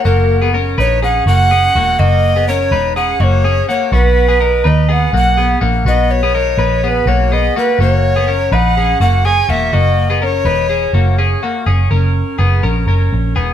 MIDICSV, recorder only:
0, 0, Header, 1, 2, 480
1, 0, Start_track
1, 0, Tempo, 483481
1, 59, Time_signature, 4, 2, 24, 8
1, 13438, End_track
2, 0, Start_track
2, 0, Title_t, "Recorder"
2, 0, Program_c, 0, 74
2, 50, Note_on_c, 0, 70, 77
2, 475, Note_off_c, 0, 70, 0
2, 797, Note_on_c, 0, 73, 92
2, 1012, Note_off_c, 0, 73, 0
2, 1028, Note_on_c, 0, 78, 97
2, 1247, Note_off_c, 0, 78, 0
2, 1267, Note_on_c, 0, 78, 104
2, 1978, Note_on_c, 0, 75, 100
2, 1993, Note_off_c, 0, 78, 0
2, 2459, Note_off_c, 0, 75, 0
2, 2466, Note_on_c, 0, 73, 94
2, 2910, Note_off_c, 0, 73, 0
2, 2943, Note_on_c, 0, 78, 97
2, 3181, Note_on_c, 0, 75, 85
2, 3196, Note_off_c, 0, 78, 0
2, 3213, Note_on_c, 0, 73, 93
2, 3223, Note_off_c, 0, 75, 0
2, 3661, Note_off_c, 0, 73, 0
2, 3668, Note_on_c, 0, 73, 75
2, 3888, Note_off_c, 0, 73, 0
2, 3912, Note_on_c, 0, 71, 86
2, 4639, Note_on_c, 0, 75, 90
2, 4654, Note_off_c, 0, 71, 0
2, 4886, Note_on_c, 0, 78, 91
2, 4901, Note_off_c, 0, 75, 0
2, 5114, Note_off_c, 0, 78, 0
2, 5128, Note_on_c, 0, 78, 84
2, 5536, Note_off_c, 0, 78, 0
2, 5837, Note_on_c, 0, 75, 85
2, 6065, Note_on_c, 0, 73, 92
2, 6080, Note_off_c, 0, 75, 0
2, 6792, Note_off_c, 0, 73, 0
2, 6792, Note_on_c, 0, 73, 75
2, 6832, Note_on_c, 0, 71, 82
2, 6842, Note_off_c, 0, 73, 0
2, 7031, Note_on_c, 0, 73, 77
2, 7046, Note_off_c, 0, 71, 0
2, 7280, Note_on_c, 0, 75, 87
2, 7295, Note_off_c, 0, 73, 0
2, 7511, Note_off_c, 0, 75, 0
2, 7527, Note_on_c, 0, 71, 82
2, 7739, Note_off_c, 0, 71, 0
2, 7764, Note_on_c, 0, 73, 96
2, 8474, Note_on_c, 0, 78, 103
2, 8489, Note_off_c, 0, 73, 0
2, 8943, Note_off_c, 0, 78, 0
2, 8949, Note_on_c, 0, 78, 95
2, 9185, Note_on_c, 0, 80, 106
2, 9199, Note_off_c, 0, 78, 0
2, 9431, Note_on_c, 0, 76, 93
2, 9446, Note_off_c, 0, 80, 0
2, 9665, Note_on_c, 0, 75, 102
2, 9680, Note_off_c, 0, 76, 0
2, 10163, Note_on_c, 0, 73, 91
2, 10178, Note_off_c, 0, 75, 0
2, 11112, Note_off_c, 0, 73, 0
2, 13438, End_track
0, 0, End_of_file